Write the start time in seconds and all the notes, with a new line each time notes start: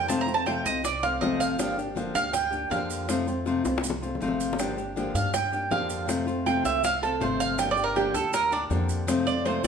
Already playing: F2
0.08 C3 F3 A3 C4 F4 A5, high bongo, maracas
0.21 A#5
0.28 A3 C4 F4, high bongo, maracas
0.34 A5
0.46 C3 F3 A3 C4 F4 G5, high bongo, maracas
0.65 C2 A3 C4 F4 D#5, high bongo, maracas
0.83 D5, muted nylon-string guitar stroke, high bongo, maracas
1.03 A3 C4 F4 F5, high bongo, maracas
1.21 G1 C3 F3 A3 C4 F4 D#5, high bongo, low bongo, maracas
1.40 F5, maracas
1.59 D3 F3 A#3 D4 G4, high bongo, maracas
1.78 A#3 D4 G4, high bongo, maracas
1.95 D3 F3 A#3 D4 G4, high bongo, maracas
2.15 D2 A#3 D4 G4 F5, high bongo, maracas
2.33 G5, muted nylon-string guitar stroke, high bongo, maracas
2.51 A#3 D4 G4, high bongo, maracas
2.70 F2 D3 F3 A#3 D4 G4 F5, high bongo, low bongo, maracas
2.90 maracas
3.08 C3 F3 A3 C4 F4, high bongo, maracas
3.27 A3 C4 F4, high bongo, maracas
3.45 C3 F3 A3 C4 F4, high bongo, maracas
3.64 C2 A3 C4 F4, high bongo, maracas
3.78 high bongo
3.83 muted nylon-string guitar stroke, maracas
3.90 low bongo
4.02 A3 C4 F4, maracas
4.15 low bongo
4.21 G1 C3 F3 A3 C4 F4, maracas
4.28 low bongo
4.40 maracas
4.53 low bongo
4.58 D3 F3 A#3 D4 G4, high bongo, maracas
4.77 A#3 D4 G4, high bongo, maracas
4.96 D3 F3 A#3 D4 G4, high bongo, maracas
5.14 G2 A#3 D4 G4 F5, high bongo, maracas
5.34 G5, muted nylon-string guitar stroke, high bongo, maracas
5.52 A#3 D4 G4, high bongo, maracas
5.70 F2 D3 F3 A#3 D4 G4 F5, high bongo, low bongo, maracas
5.90 maracas
6.07 C3 F3 A3 C4 F4, high bongo, maracas
6.27 A3 C4 F4, high bongo, maracas
6.46 C3 F3 A3 C4 F4 G5, high bongo, maracas
6.64 C2 A3 C4 F4 E5, high bongo, maracas
6.83 F5, muted nylon-string guitar stroke, high bongo, maracas
7.02 A3 C4 F4 A4, high bongo, maracas
7.20 G1 C3 F3 A3 C4 F4 C5, high bongo, low bongo, maracas
7.40 F5, maracas
7.58 D3 F3 A#3 D4 G4 G5, high bongo, maracas
7.71 D5
7.76 A#3 D4 G4, high bongo, maracas
7.84 A#4
7.95 D3 F3 A#3 D4 G4, high bongo, maracas
8.14 D2 A#3 D4 G4 A4, high bongo, maracas
8.33 A#4, muted nylon-string guitar stroke, high bongo, maracas
8.51 A#3 D4 G4, high bongo, maracas
8.70 F2 D3 F3 A#3 D4 G4, high bongo, low bongo, maracas
8.89 maracas
9.07 C3 F3 A3 C4 F4, high bongo, maracas
9.26 A3 C4 F4 D5, high bongo, maracas
9.45 C3 F3 A3 C4 F4 C5, high bongo, maracas
9.63 F4